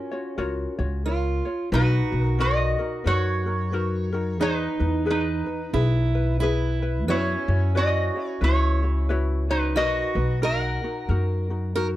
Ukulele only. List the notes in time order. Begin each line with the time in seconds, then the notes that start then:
Already playing: F4 F#4 A#4 C#5
0.11 F4 F#4 C#5
0.38 F4 F#4 A#4 C#5
0.79 F4 F#4 C#5
1.05 F4 A#4 C#5
1.45 F4 C#5
1.72 D#4 F#4 B4
2.13 D#4 F#4
2.39 D#4 F#4 A#4 B4
2.79 D#4 F#4 A#4
3.04 D#4 F#4 A#4 B4
3.46 D#4 F#4 A#4
3.72 D#4 F#4 A#4 B4
4.12 D#4 F#4 A#4
4.40 D#4 G#4 B4
4.79 D#4 B4
5.05 D#4 G#4 B4
5.46 D#4 B4
5.74 G#4 B4
6.15 B4
6.42 G#4 B4
6.82 E4 B4
7.08 E4 F#4 B4 C#5
7.48 E4 F#4 C#5
7.75 E4 F#4 B4 C#5
8.16 E4 F#4 C#5
8.41 E4 F#4 B4 C#5
8.82 E4 F#4 C#5
9.09 E4 F#4 B4 C#5
9.49 F#4 C#5
9.76 D#4 F#4 A#4 B4
10.16 D#4 F#4 B4
10.42 D#4 F#4 A#4
10.84 D#4 F#4
11.09 D#4 F#4 A#4
11.50 D#4 F#4
11.76 D#4 F#4 A#4